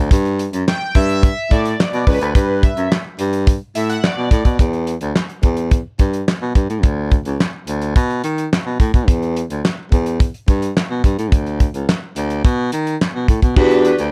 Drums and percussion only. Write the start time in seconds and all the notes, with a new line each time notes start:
0.11 kick, closed hi-hat
0.25 closed hi-hat
0.39 closed hi-hat
0.53 closed hi-hat
0.68 snare, clap
0.95 kick, closed hi-hat
1.09 closed hi-hat
1.23 kick, closed hi-hat
1.51 kick, closed hi-hat
1.65 closed hi-hat
1.80 snare, clap
1.93 closed hi-hat
2.07 kick, open hi-hat
2.21 closed hi-hat
2.35 kick, closed hi-hat
2.63 kick, closed hi-hat
2.77 closed hi-hat
2.92 snare, clap
3.19 closed hi-hat
3.33 closed hi-hat
3.47 kick, closed hi-hat
3.75 closed hi-hat
3.90 closed hi-hat
4.04 snare, clap
4.31 kick, closed hi-hat
4.45 kick, closed hi-hat
4.59 kick, closed hi-hat
4.73 closed hi-hat
4.87 closed hi-hat
5.01 closed hi-hat
5.16 snare, clap
5.29 closed hi-hat
5.43 kick, closed hi-hat
5.57 closed hi-hat
5.71 kick, closed hi-hat
5.99 kick, closed hi-hat
6.13 closed hi-hat
6.28 snare, clap
6.55 kick, closed hi-hat
6.70 closed hi-hat
6.83 kick, closed hi-hat
7.11 kick, closed hi-hat
7.25 closed hi-hat
7.40 snare, clap
7.67 closed hi-hat
7.82 closed hi-hat
7.96 kick, closed hi-hat
8.10 closed hi-hat
8.24 closed hi-hat
8.38 closed hi-hat
8.53 snare, clap
8.80 kick, closed hi-hat
8.94 kick, closed hi-hat
9.08 kick, closed hi-hat
9.22 closed hi-hat
9.37 closed hi-hat
9.50 closed hi-hat
9.65 snare, clap
9.92 kick, closed hi-hat
10.06 closed hi-hat
10.20 kick, closed hi-hat
10.34 closed hi-hat
10.48 kick, closed hi-hat
10.62 closed hi-hat
10.77 snare, clap
11.04 kick, closed hi-hat
11.19 closed hi-hat
11.32 kick, closed hi-hat
11.46 closed hi-hat
11.60 kick, closed hi-hat
11.74 closed hi-hat
11.89 snare, clap
12.16 closed hi-hat
12.30 closed hi-hat
12.45 kick, closed hi-hat
12.72 closed hi-hat
12.87 closed hi-hat
13.01 snare, clap
13.28 kick, closed hi-hat
13.42 kick, closed hi-hat
13.56 kick, crash
13.71 closed hi-hat
13.85 closed hi-hat
13.98 closed hi-hat